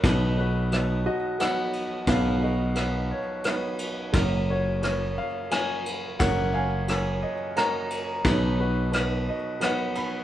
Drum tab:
RD |x-x-xx|x-x-xx|x-x-xx|x-x-xx|
SD |--r-r-|--r-r-|--r-r-|--r-r-|
BD |o-----|o-----|o-----|o-----|

RD |x-x-xx|
SD |--r-r-|
BD |o-----|